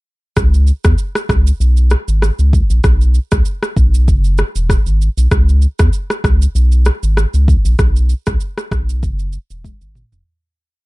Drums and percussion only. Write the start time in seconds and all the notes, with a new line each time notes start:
0.37 kick, cross-stick, shaker
0.54 shaker
0.67 shaker
0.84 kick, cross-stick, shaker
0.98 shaker
1.15 cross-stick, shaker
1.29 kick, cross-stick, shaker
1.47 shaker
1.61 shaker
1.77 shaker
1.90 cross-stick, shaker
2.08 shaker
2.22 cross-stick, shaker
2.39 shaker
2.53 kick, shaker
2.70 shaker
2.84 kick, cross-stick, shaker
3.01 shaker
3.14 shaker
3.32 kick, cross-stick, shaker
3.45 shaker
3.63 cross-stick, shaker
3.77 kick, shaker
3.94 shaker
4.08 kick, shaker
4.24 shaker
4.38 cross-stick, shaker
4.56 shaker
4.70 kick, cross-stick, shaker
4.86 shaker
5.02 shaker
5.18 shaker
5.31 kick, cross-stick, shaker
5.49 shaker
5.62 shaker
5.79 kick, cross-stick, shaker
5.93 shaker
6.10 cross-stick, shaker
6.24 kick, cross-stick, shaker
6.42 shaker
6.56 shaker
6.72 shaker
6.85 cross-stick, shaker
7.03 shaker
7.17 cross-stick, shaker
7.34 shaker
7.48 kick, shaker
7.65 shaker
7.79 kick, cross-stick, shaker
7.96 shaker
8.09 shaker
8.27 kick, cross-stick, shaker
8.40 shaker
8.58 cross-stick, shaker
8.71 kick, cross-stick, shaker
8.89 shaker
9.03 kick, shaker
9.19 shaker
9.33 shaker
9.51 shaker
9.64 kick, high tom, shaker
9.81 shaker
9.95 mid tom, shaker
10.12 floor tom, shaker